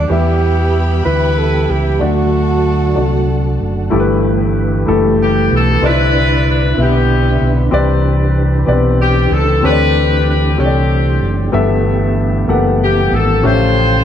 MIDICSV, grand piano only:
0, 0, Header, 1, 2, 480
1, 0, Start_track
1, 0, Key_signature, 1, "major"
1, 0, Tempo, 634921
1, 79, Time_signature, 6, 3, 24, 8
1, 10614, End_track
2, 0, Start_track
2, 0, Title_t, "Grand piano"
2, 0, Program_c, 0, 0
2, 0, Control_c, 0, 64, 127
2, 0, Note_on_c, 0, 50, 49
2, 0, Note_on_c, 0, 57, 51
2, 0, Note_on_c, 0, 62, 47
2, 0, Note_on_c, 0, 66, 48
2, 0, Note_on_c, 0, 72, 48
2, 0, Note_on_c, 0, 74, 55
2, 70, Note_on_c, 0, 59, 60
2, 75, Note_on_c, 0, 64, 49
2, 79, Note_on_c, 0, 52, 46
2, 82, Note_on_c, 0, 67, 53
2, 87, Note_on_c, 0, 76, 68
2, 88, Note_off_c, 0, 66, 0
2, 88, Control_c, 0, 64, 0
2, 89, Note_off_c, 0, 50, 0
2, 92, Note_off_c, 0, 57, 0
2, 95, Note_off_c, 0, 62, 0
2, 95, Note_off_c, 0, 74, 0
2, 96, Note_off_c, 0, 72, 0
2, 212, Control_c, 0, 64, 127
2, 749, Note_off_c, 0, 59, 0
2, 752, Note_off_c, 0, 64, 0
2, 755, Note_off_c, 0, 67, 0
2, 758, Note_off_c, 0, 76, 0
2, 771, Note_off_c, 0, 52, 0
2, 788, Note_on_c, 0, 59, 50
2, 793, Note_on_c, 0, 64, 46
2, 800, Note_on_c, 0, 67, 49
2, 805, Note_on_c, 0, 76, 56
2, 1469, Note_off_c, 0, 59, 0
2, 1472, Note_off_c, 0, 64, 0
2, 1475, Note_off_c, 0, 67, 0
2, 1478, Note_off_c, 0, 76, 0
2, 1505, Note_on_c, 0, 57, 55
2, 1510, Note_on_c, 0, 62, 51
2, 1512, Note_on_c, 0, 50, 46
2, 1518, Note_on_c, 0, 66, 51
2, 1519, Note_on_c, 0, 74, 65
2, 1534, Control_c, 0, 64, 0
2, 1652, Control_c, 0, 64, 127
2, 2188, Note_off_c, 0, 57, 0
2, 2191, Note_off_c, 0, 62, 0
2, 2195, Note_off_c, 0, 66, 0
2, 2196, Note_off_c, 0, 74, 0
2, 2210, Note_off_c, 0, 50, 0
2, 2231, Note_on_c, 0, 57, 55
2, 2231, Note_on_c, 0, 62, 54
2, 2241, Note_on_c, 0, 66, 54
2, 2243, Note_on_c, 0, 74, 62
2, 2912, Note_off_c, 0, 57, 0
2, 2912, Note_off_c, 0, 62, 0
2, 2917, Note_off_c, 0, 66, 0
2, 2918, Note_off_c, 0, 74, 0
2, 2949, Note_on_c, 0, 57, 77
2, 2956, Note_on_c, 0, 64, 71
2, 2961, Note_on_c, 0, 43, 59
2, 2962, Note_on_c, 0, 67, 71
2, 2971, Note_on_c, 0, 69, 66
2, 2978, Control_c, 0, 64, 0
2, 3018, Note_off_c, 0, 69, 0
2, 3021, Note_on_c, 0, 71, 84
2, 3106, Control_c, 0, 64, 127
2, 3631, Note_off_c, 0, 57, 0
2, 3634, Note_off_c, 0, 64, 0
2, 3637, Note_off_c, 0, 67, 0
2, 3655, Note_off_c, 0, 43, 0
2, 3667, Note_off_c, 0, 71, 0
2, 3675, Note_on_c, 0, 57, 72
2, 3681, Note_on_c, 0, 64, 60
2, 3687, Note_on_c, 0, 67, 64
2, 3692, Note_on_c, 0, 69, 81
2, 4354, Note_off_c, 0, 57, 0
2, 4357, Note_off_c, 0, 64, 0
2, 4360, Note_off_c, 0, 67, 0
2, 4362, Note_off_c, 0, 69, 0
2, 4396, Note_on_c, 0, 60, 70
2, 4400, Note_on_c, 0, 63, 49
2, 4403, Note_on_c, 0, 48, 52
2, 4407, Note_on_c, 0, 71, 63
2, 4414, Note_on_c, 0, 74, 81
2, 4419, Control_c, 0, 64, 0
2, 4450, Note_on_c, 0, 64, 61
2, 4453, Note_off_c, 0, 63, 0
2, 4541, Control_c, 0, 64, 127
2, 5074, Note_off_c, 0, 60, 0
2, 5080, Note_off_c, 0, 71, 0
2, 5083, Note_off_c, 0, 74, 0
2, 5095, Note_off_c, 0, 48, 0
2, 5101, Note_off_c, 0, 64, 0
2, 5119, Note_on_c, 0, 59, 64
2, 5125, Note_on_c, 0, 64, 56
2, 5130, Note_on_c, 0, 71, 58
2, 5137, Note_on_c, 0, 76, 67
2, 5795, Note_off_c, 0, 59, 0
2, 5798, Note_off_c, 0, 64, 0
2, 5801, Note_off_c, 0, 71, 0
2, 5804, Note_off_c, 0, 76, 0
2, 5829, Note_on_c, 0, 60, 82
2, 5834, Note_on_c, 0, 67, 78
2, 5839, Note_on_c, 0, 48, 66
2, 5841, Note_on_c, 0, 71, 79
2, 5849, Note_on_c, 0, 74, 95
2, 5859, Control_c, 0, 64, 0
2, 5986, Control_c, 0, 64, 127
2, 6510, Note_off_c, 0, 60, 0
2, 6512, Note_off_c, 0, 67, 0
2, 6516, Note_off_c, 0, 71, 0
2, 6520, Note_off_c, 0, 74, 0
2, 6532, Note_off_c, 0, 48, 0
2, 6545, Note_on_c, 0, 59, 60
2, 6551, Note_on_c, 0, 67, 70
2, 6557, Note_on_c, 0, 71, 67
2, 6564, Note_on_c, 0, 74, 81
2, 6593, Note_on_c, 0, 60, 71
2, 6605, Note_off_c, 0, 59, 0
2, 7230, Note_off_c, 0, 67, 0
2, 7233, Note_off_c, 0, 71, 0
2, 7237, Note_off_c, 0, 74, 0
2, 7251, Note_off_c, 0, 60, 0
2, 7272, Note_on_c, 0, 60, 72
2, 7278, Note_on_c, 0, 67, 59
2, 7282, Note_on_c, 0, 50, 56
2, 7287, Note_on_c, 0, 69, 67
2, 7288, Note_on_c, 0, 73, 65
2, 7296, Control_c, 0, 64, 0
2, 7336, Note_off_c, 0, 73, 0
2, 7338, Note_on_c, 0, 74, 70
2, 7410, Control_c, 0, 64, 127
2, 7950, Note_off_c, 0, 60, 0
2, 7953, Note_off_c, 0, 67, 0
2, 7957, Note_off_c, 0, 69, 0
2, 7972, Note_off_c, 0, 50, 0
2, 7983, Note_off_c, 0, 74, 0
2, 7992, Note_on_c, 0, 60, 55
2, 7998, Note_on_c, 0, 67, 56
2, 8004, Note_on_c, 0, 69, 51
2, 8010, Note_on_c, 0, 73, 58
2, 8056, Note_off_c, 0, 73, 0
2, 8057, Note_on_c, 0, 74, 67
2, 8669, Note_off_c, 0, 60, 0
2, 8672, Note_off_c, 0, 67, 0
2, 8676, Note_off_c, 0, 69, 0
2, 8702, Note_off_c, 0, 74, 0
2, 8710, Note_on_c, 0, 59, 80
2, 8711, Note_on_c, 0, 67, 71
2, 8714, Note_on_c, 0, 43, 68
2, 8718, Note_on_c, 0, 69, 72
2, 8725, Note_on_c, 0, 76, 88
2, 8732, Control_c, 0, 64, 0
2, 8850, Control_c, 0, 64, 127
2, 9388, Note_off_c, 0, 59, 0
2, 9389, Note_off_c, 0, 67, 0
2, 9392, Note_off_c, 0, 69, 0
2, 9395, Note_off_c, 0, 76, 0
2, 9407, Note_off_c, 0, 43, 0
2, 9430, Note_on_c, 0, 58, 55
2, 9439, Note_on_c, 0, 67, 70
2, 9442, Note_on_c, 0, 69, 65
2, 9449, Note_on_c, 0, 78, 78
2, 9479, Note_on_c, 0, 59, 77
2, 9485, Note_off_c, 0, 58, 0
2, 10112, Note_off_c, 0, 67, 0
2, 10114, Note_off_c, 0, 69, 0
2, 10117, Note_off_c, 0, 78, 0
2, 10132, Note_off_c, 0, 59, 0
2, 10155, Note_on_c, 0, 61, 75
2, 10156, Note_on_c, 0, 67, 62
2, 10164, Note_on_c, 0, 69, 69
2, 10165, Note_on_c, 0, 45, 58
2, 10169, Note_on_c, 0, 76, 59
2, 10172, Control_c, 0, 64, 0
2, 10214, Note_off_c, 0, 76, 0
2, 10223, Note_on_c, 0, 77, 70
2, 10300, Control_c, 0, 64, 127
2, 10614, Note_off_c, 0, 45, 0
2, 10614, Note_off_c, 0, 61, 0
2, 10614, Note_off_c, 0, 67, 0
2, 10614, Note_off_c, 0, 69, 0
2, 10614, Note_off_c, 0, 77, 0
2, 10614, End_track
0, 0, End_of_file